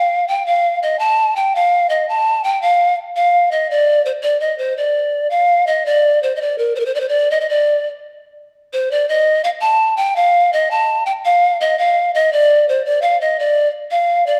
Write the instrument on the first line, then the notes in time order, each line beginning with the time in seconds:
pan flute
Already playing: F5
0.28 G5
0.46 F5
0.83 D#5
0.99 A5
1.36 G5
1.55 F5
1.89 D#5
2.09 A5
2.44 G5
2.62 F5
3.16 F5
3.51 D#5
3.71 D5
4.06 C5
4.23 D5
4.40 D#5
4.58 C5
4.77 D5
5.30 F5
5.67 D#5
5.86 D5
6.23 C5
6.36 D#5
6.41 D5
6.58 A#4
6.75 C5
6.80 A#4
6.86 C5
6.95 D5
7.00 C5
7.09 D5
7.31 D#5
7.41 D#5
7.49 D5
8.73 C5
8.91 D5
9.09 D#5
9.44 F5
9.61 A5
9.97 G5
10.16 F5
10.53 D#5
10.71 A5
11.06 G5
11.25 F5
11.61 D#5
11.79 F5
12.15 D#5
12.33 D5
12.69 C5
12.85 D5
13.02 F5
13.21 D#5
13.39 D5
13.91 F5
14.27 D5